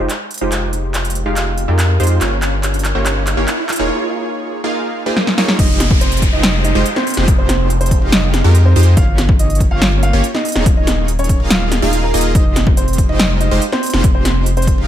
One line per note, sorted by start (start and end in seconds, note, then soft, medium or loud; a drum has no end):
0.00 riser medium
0.10 clap medium
0.10 closed hi-hat medium
0.31 closed hi-hat medium
0.34 closed hi-hat medium
0.38 1.24 F1 medium
0.38 1.23 G#3 medium
0.38 1.23 D#4 medium
0.38 1.23 F4 medium
0.38 1.23 G4 medium
0.38 1.23 C5 loud
0.38 closed hi-hat medium
0.52 clap medium
0.52 closed hi-hat medium
0.73 closed hi-hat medium
0.94 clap medium
0.94 closed hi-hat medium
1.05 closed hi-hat soft
1.10 closed hi-hat medium
1.15 closed hi-hat medium
1.26 1.66 F1 medium
1.26 1.66 G#3 medium
1.26 1.66 D#4 medium
1.26 1.66 F4 medium
1.26 1.66 G4 medium
1.26 1.66 F5 loud
1.36 clap medium
1.36 closed hi-hat medium
1.58 closed hi-hat medium
1.68 1.98 F2 loud
1.68 1.97 G#3 medium
1.68 1.97 D#4 medium
1.68 1.97 F4 medium
1.68 1.97 G4 medium
1.68 1.97 A#4 medium
1.79 clap medium
1.79 closed hi-hat medium
2.00 2.19 F2 loud
2.00 2.18 G#3 medium
2.00 2.18 D#4 medium
2.00 2.18 F4 medium
2.00 2.18 G4 medium
2.00 2.18 C5 loud
2.00 closed hi-hat soft
2.03 closed hi-hat medium
2.07 closed hi-hat medium
2.21 2.93 G1 loud
2.21 2.92 A#3 medium
2.21 2.92 C#4 medium
2.21 2.92 F4 medium
2.21 2.92 G4 medium
2.21 2.92 C#5 medium
2.21 clap medium
2.21 closed hi-hat medium
2.42 clap medium
2.42 closed hi-hat medium
2.63 clap medium
2.63 closed hi-hat medium
2.74 closed hi-hat soft
2.79 closed hi-hat medium
2.85 clap medium
2.85 closed hi-hat medium
2.95 3.35 G1 loud
2.95 3.35 A#3 medium
2.95 3.35 C#4 medium
2.95 3.35 F4 medium
2.95 3.35 G4 medium
2.95 3.35 C#5 medium
3.06 clap medium
3.06 closed hi-hat medium
3.27 clap medium
3.27 closed hi-hat medium
3.37 3.45 G1 medium
3.37 3.47 A#3 medium
3.37 3.47 C#4 medium
3.37 3.47 F4 medium
3.37 3.47 G4 medium
3.37 3.47 C#5 loud
3.48 clap medium
3.48 closed hi-hat medium
3.69 clap medium
3.69 closed hi-hat soft
3.72 closed hi-hat medium
3.76 3.90 D#1 loud
3.76 4.61 A#3 medium
3.76 4.61 D#4 medium
3.76 4.61 F4 medium
3.76 4.61 G#4 medium
3.76 4.61 C#5 loud
3.76 closed hi-hat medium
4.64 5.04 A#3 medium
4.64 5.04 D#4 medium
4.64 5.04 F4 medium
4.64 5.04 G#4 medium
4.64 5.04 F5 loud
5.06 5.35 A#3 medium
5.06 5.35 D#4 medium
5.06 5.35 F4 medium
5.06 5.35 G#4 medium
5.06 5.35 C5 medium
5.17 snare medium
5.27 snare medium
5.38 5.56 A#3 loud
5.38 5.56 D#4 medium
5.38 5.56 F4 medium
5.38 5.56 G#4 medium
5.38 5.56 C#5 loud
5.38 snare medium
5.48 snare medium
5.59 6.31 F1 loud
5.59 6.30 G#3 medium
5.59 5.85 D#4 medium
5.59 6.30 D#4 medium
5.59 6.30 F4 medium
5.59 6.30 G4 medium
5.59 6.30 C5 medium
5.59 5.85 D#5 loud
5.59 kick loud
5.59 closed hi-hat medium
5.59 crash loud
5.59 downlifter medium
5.80 snare medium
5.80 closed hi-hat medium
5.91 kick loud
6.01 6.21 C4 medium
6.01 6.21 C5 medium
6.01 closed hi-hat medium
6.12 closed hi-hat soft
6.17 closed hi-hat medium
6.22 kick medium
6.22 closed hi-hat medium
6.33 6.73 F1 medium
6.33 6.73 G#3 medium
6.33 6.53 D#4 medium
6.33 6.73 D#4 medium
6.33 6.73 F4 medium
6.33 6.73 G4 medium
6.33 6.73 C5 medium
6.33 6.53 D#5 loud
6.43 snare loud
6.43 closed hi-hat medium
6.64 6.84 D#4 medium
6.64 6.84 D#5 loud
6.64 closed hi-hat medium
6.75 6.83 F1 loud
6.75 6.85 G#3 medium
6.75 6.85 D#4 medium
6.75 6.85 F4 medium
6.75 6.85 G4 medium
6.75 6.85 C5 loud
6.86 closed hi-hat medium
6.96 7.23 C4 medium
6.96 7.23 C5 medium
6.96 snare medium
7.07 closed hi-hat medium
7.07 open hi-hat medium
7.14 8.00 F1 loud
7.14 7.99 G#3 loud
7.14 7.99 D#4 medium
7.14 7.99 F4 medium
7.14 7.99 G4 medium
7.14 7.99 C5 loud
7.14 snare medium
7.14 closed hi-hat medium
7.28 kick loud
7.28 closed hi-hat medium
7.38 7.65 C4 medium
7.38 7.65 C5 medium
7.49 snare medium
7.49 closed hi-hat medium
7.70 closed hi-hat medium
7.81 8.01 C4 medium
7.81 8.01 C5 medium
7.81 closed hi-hat medium
7.86 closed hi-hat medium
7.91 kick medium
7.91 closed hi-hat medium
8.02 8.42 F1 medium
8.02 8.42 G#3 medium
8.02 8.42 D#4 medium
8.02 8.42 F4 medium
8.02 8.42 G4 medium
8.02 8.42 F5 loud
8.12 8.26 D#4 medium
8.12 8.26 D#5 medium
8.12 snare loud
8.12 closed hi-hat medium
8.34 snare medium
8.34 closed hi-hat medium
8.44 8.74 F2 loud
8.44 8.73 G#3 medium
8.44 8.73 D#4 medium
8.44 8.73 F4 medium
8.44 8.73 G4 medium
8.44 8.73 A#4 medium
8.55 closed hi-hat medium
8.65 8.85 C4 medium
8.65 8.85 C5 medium
8.76 8.95 F2 loud
8.76 8.95 G#3 loud
8.76 8.95 D#4 medium
8.76 8.95 F4 medium
8.76 8.95 G4 medium
8.76 8.95 C5 loud
8.76 closed hi-hat medium
8.76 open hi-hat medium
8.83 closed hi-hat medium
8.97 9.69 G1 loud
8.97 9.69 A#3 medium
8.97 9.69 C#4 medium
8.97 9.23 F4 medium
8.97 9.23 F5 loud
8.97 kick loud
8.97 closed hi-hat medium
9.18 snare medium
9.18 closed hi-hat medium
9.29 kick loud
9.39 9.59 D#4 medium
9.39 9.59 D#5 medium
9.39 closed hi-hat medium
9.50 closed hi-hat soft
9.55 closed hi-hat medium
9.60 kick medium
9.60 closed hi-hat medium
9.71 10.11 G1 medium
9.71 10.11 A#3 medium
9.71 10.11 C#4 medium
9.71 10.11 F4 medium
9.71 9.91 F4 medium
9.71 10.11 G4 medium
9.71 10.11 C#5 medium
9.71 9.91 F5 loud
9.82 snare loud
9.82 closed hi-hat medium
10.03 10.23 F4 medium
10.03 10.23 F5 loud
10.03 closed hi-hat medium
10.13 10.21 G1 loud
10.13 10.24 A#3 medium
10.13 10.24 C#4 medium
10.13 10.24 F4 medium
10.13 10.24 G4 medium
10.13 10.24 C#5 loud
10.24 closed hi-hat medium
10.35 10.61 D#4 medium
10.35 10.61 D#5 medium
10.35 snare medium
10.45 closed hi-hat medium
10.45 open hi-hat medium
10.52 11.38 D#1 loud
10.52 11.38 A#3 medium
10.52 11.38 D#4 medium
10.52 11.38 F4 medium
10.52 11.38 G#4 medium
10.52 11.38 C#5 loud
10.52 snare medium
10.52 closed hi-hat medium
10.66 kick loud
10.66 closed hi-hat medium
10.77 11.03 D#4 medium
10.77 11.03 D#5 medium
10.87 snare medium
10.87 closed hi-hat medium
11.08 closed hi-hat medium
11.19 11.39 C#4 medium
11.19 11.39 C#5 medium
11.19 closed hi-hat soft
11.24 closed hi-hat medium
11.29 kick medium
11.29 closed hi-hat medium
11.40 11.80 D#1 medium
11.40 11.80 A#3 medium
11.40 11.80 D#4 medium
11.40 11.80 F4 medium
11.40 11.80 G#4 medium
11.40 11.80 F5 loud
11.50 11.64 F4 medium
11.50 11.64 F5 medium
11.50 snare loud
11.50 closed hi-hat medium
11.72 snare medium
11.72 closed hi-hat medium
11.82 12.12 D#1 loud
11.82 12.11 A#3 loud
11.82 12.11 D#4 medium
11.82 12.11 F4 loud
11.82 12.11 G#4 medium
11.82 12.11 F5 loud
11.93 closed hi-hat medium
12.03 12.23 A#4 medium
12.03 12.23 A#5 medium
12.14 12.36 D#1 loud
12.14 12.33 A#3 loud
12.14 12.33 D#4 medium
12.14 12.33 F4 medium
12.14 12.33 G#4 loud
12.14 12.33 D#5 loud
12.14 closed hi-hat medium
12.14 open hi-hat medium
12.21 closed hi-hat medium
12.35 13.07 F1 loud
12.35 13.07 G#3 medium
12.35 12.61 D#4 medium
12.35 13.07 D#4 medium
12.35 13.07 F4 medium
12.35 13.07 G4 medium
12.35 13.07 C5 medium
12.35 12.61 D#5 loud
12.35 kick loud
12.35 closed hi-hat medium
12.56 snare medium
12.56 closed hi-hat medium
12.67 kick loud
12.77 12.97 C4 medium
12.77 12.97 C5 medium
12.77 closed hi-hat medium
12.88 closed hi-hat soft
12.93 closed hi-hat medium
12.98 kick medium
12.98 closed hi-hat medium
13.09 13.49 F1 loud
13.09 13.49 G#3 medium
13.09 13.29 D#4 medium
13.09 13.49 D#4 medium
13.09 13.49 F4 medium
13.09 13.49 G4 medium
13.09 13.49 C5 medium
13.09 13.29 D#5 medium
13.20 snare loud
13.20 closed hi-hat medium
13.41 13.60 D#4 medium
13.41 13.60 D#5 loud
13.41 closed hi-hat medium
13.51 13.59 F1 loud
13.51 13.62 G#3 medium
13.51 13.62 D#4 medium
13.51 13.62 F4 medium
13.51 13.62 G4 medium
13.51 13.62 C5 loud
13.62 closed hi-hat medium
13.72 13.99 C4 medium
13.72 13.99 C5 medium
13.72 snare medium
13.83 closed hi-hat medium
13.83 open hi-hat medium
13.90 14.76 F1 loud
13.90 14.76 G#3 medium
13.90 14.76 D#4 medium
13.90 14.76 F4 medium
13.90 14.76 G4 medium
13.90 14.76 C5 loud
13.90 snare medium
13.90 closed hi-hat medium
14.04 kick loud
14.04 closed hi-hat medium
14.15 14.41 C4 medium
14.15 14.41 C5 medium
14.25 snare medium
14.25 closed hi-hat medium
14.46 closed hi-hat medium
14.57 14.77 C4 medium
14.57 14.77 C5 medium
14.57 closed hi-hat soft
14.62 closed hi-hat medium
14.67 kick medium
14.67 closed hi-hat medium
14.78 14.87 F1 medium
14.78 14.87 G#3 loud
14.78 14.87 D#4 medium
14.78 14.87 F4 medium
14.78 14.87 G4 medium
14.78 14.87 F5 loud